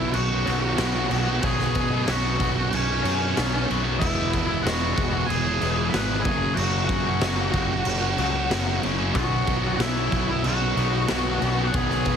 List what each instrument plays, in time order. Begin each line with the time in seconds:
Already playing: fingered electric bass B1, distorted electric guitar B2 C#4, overdriven electric guitar B2, lead electric guitar E4 E5
0.00 distorted electric guitar F#3 B3
0.14 fingered electric bass B1, lead electric guitar F#4 F#5, crash
0.30 distorted electric guitar F#3 B3 C#4
0.46 fingered electric bass B1, distorted electric guitar B2 F#3 B3 C#4, overdriven electric guitar F#4, crash
0.61 distorted electric guitar B3 C#4, muted overdriven electric guitar stroke
0.66 distorted electric guitar F#3
0.77 fingered electric bass B1, distorted electric guitar B2 F#3 B3 C#4, overdriven electric guitar F#4, snare, crash
0.94 distorted electric guitar F#3 B3 C#4
1.09 fingered electric bass B1, overdriven electric guitar F#3 B3 C#4 F#4, crash
1.25 distorted electric guitar F#3 B3 C#4, overdriven electric guitar F#4
1.42 fingered electric bass B1, distorted electric guitar B2 F#3 B3 C#4, overdriven electric guitar F#4, lead electric guitar G#4 G#5, kick, crash
1.59 snare
1.75 distorted electric guitar B2 F#3 B3 C#4, fingered electric bass B2, kick, crash
1.89 distorted electric guitar B3 C#4, overdriven electric guitar F#4
1.94 distorted electric guitar F#3
2.07 fingered electric bass B1, distorted electric guitar B2 F#3 B3 C#4, overdriven electric guitar F#4, lead electric guitar F#4 F#5, snare, crash
2.20 overdriven electric guitar B3 C#4 F#4
2.38 fingered electric bass B1, distorted electric guitar B2 F#3, overdriven electric guitar B3 F#4, kick, crash
2.42 distorted electric guitar B3 C#4
2.56 distorted electric guitar F#3 B3 C#4, muted overdriven electric guitar stroke
2.72 fingered electric bass B1, lead electric guitar C#4 C#5, crash
2.88 distorted electric guitar F#3 B3 C#4
3.02 fingered electric bass F#2, distorted electric guitar B2 F#3 B3 C#4, overdriven electric guitar F#4, crash
3.19 distorted electric guitar F#3 B3 C#4, muted overdriven electric guitar stroke
3.36 fingered electric bass B1, distorted electric guitar B2 F#3 B3 C#4, overdriven electric guitar F#4, snare, crash
3.51 distorted electric guitar F#3 B3 C#4
3.68 fingered electric bass B1, overdriven electric guitar F#3 B3 C#4 F#4, crash
3.82 distorted electric guitar F#3 B3 C#4, overdriven electric guitar F#4
3.99 fingered electric bass E1, distorted electric guitar E3 G#3 B3 E4, lead electric guitar E4 E5, kick, crash
4.32 fingered electric bass E1, distorted electric guitar E3 G#3 B3 E4, kick, crash
4.47 distorted electric guitar G#3 B3 E4
4.63 fingered electric bass E1, distorted electric guitar E3 G#3 B3, lead electric guitar F#4 F#5, crash
4.67 distorted electric guitar E4, snare
4.81 overdriven electric guitar G#3 B3 E4
4.96 fingered electric bass E1, distorted electric guitar E3 G#3 B3 E4, kick, crash
5.11 distorted electric guitar G#3 B3 E4, muted overdriven electric guitar stroke
5.26 fingered electric bass E1, lead electric guitar G#4 G#5, crash
5.43 distorted electric guitar G#3 B3 E4
5.59 fingered electric bass E1, distorted electric guitar E3 G#3 B3 E4, crash
5.76 distorted electric guitar G#3 B3 E4, muted overdriven electric guitar stroke
5.90 fingered electric bass G#1, distorted electric guitar E3 G#3, lead electric guitar B5, crash
5.94 distorted electric guitar B3 E4, lead electric guitar B4, snare
6.08 distorted electric guitar G#3 B3 E4
6.21 distorted electric guitar F#2 C#3, lead electric guitar G#5
6.25 fingered electric bass F#1, distorted electric guitar F#3 A#3 C#4, lead electric guitar G#4, kick, crash
6.39 distorted electric guitar F#3 A#3 C#4
6.54 fingered electric bass F#1, distorted electric guitar F#2 C#3 F#3, lead electric guitar F#4 F#5, crash
6.58 distorted electric guitar A#3 C#4
6.85 distorted electric guitar C#3 F#3, lead electric guitar F#4 F#5
6.89 fingered electric bass F#2, distorted electric guitar A#3 C#4, kick, crash
7.03 distorted electric guitar A#3 C#4
7.07 distorted electric guitar F#3
7.19 fingered electric bass F#1, distorted electric guitar F#2 C#3 F#3 A#3 C#4, snare, crash
7.37 overdriven electric guitar F#3 A#3 C#4
7.52 fingered electric bass F#1, distorted electric guitar C#3 F#3 A#3 C#4, kick, crash
7.68 distorted electric guitar F#3 A#3 C#4, muted overdriven electric guitar stroke
7.85 fingered electric bass F#1, crash
8.01 distorted electric guitar F#3 A#3 C#4
8.15 fingered electric bass C#2, distorted electric guitar C#3 F#3 A#3 C#4, crash
8.32 distorted electric guitar F#3 A#3 C#4, muted overdriven electric guitar stroke
8.49 fingered electric bass F#1, distorted electric guitar F#2 C#3 F#3 A#3 C#4, snare, crash
8.67 distorted electric guitar F#3 A#3 C#4
8.82 fingered electric bass F#1, overdriven electric guitar C#3 F#3 A#3 C#4, crash
8.98 distorted electric guitar F#3 A#3 C#4
9.14 fingered electric bass B1, distorted electric guitar B2 F#3 B3 C#4, lead electric guitar F#4 F#5, kick, crash
9.47 fingered electric bass B1, distorted electric guitar B2 F#3 B3 C#4, kick, crash
9.61 distorted electric guitar F#3 B3 C#4
9.78 fingered electric bass B1, distorted electric guitar B2 F#3 B3 C#4, lead electric guitar E4 E5, snare, crash
9.96 overdriven electric guitar F#3 B3 C#4
10.12 fingered electric bass B1, distorted electric guitar B2 F#3 B3 C#4, kick, crash
10.28 distorted electric guitar F#3 B3 C#4, muted overdriven electric guitar stroke
10.44 fingered electric bass B1, distorted electric guitar B2 F#3 B3, lead electric guitar F#4 F#5, crash
10.59 distorted electric guitar B3 C#4
10.63 distorted electric guitar F#3
10.75 fingered electric bass B1, distorted electric guitar B2 F#3 B3, crash
10.79 distorted electric guitar C#4
10.91 distorted electric guitar F#3 B3 C#4, muted overdriven electric guitar stroke
11.08 fingered electric bass B1, distorted electric guitar B2 F#3 B3 C#4, snare, crash
11.24 distorted electric guitar F#3 B3 C#4
11.40 fingered electric bass B1, overdriven electric guitar B2 F#3 B3 C#4, crash
11.56 distorted electric guitar F#3 B3 C#4
11.67 lead electric guitar F#5
11.72 fingered electric bass B1, distorted electric guitar B2 F#3 B3 C#4, lead electric guitar G#4 G#5, kick, crash
11.90 snare
12.04 distorted electric guitar B2 F#3 B3 C#4, fingered electric bass B2, kick, crash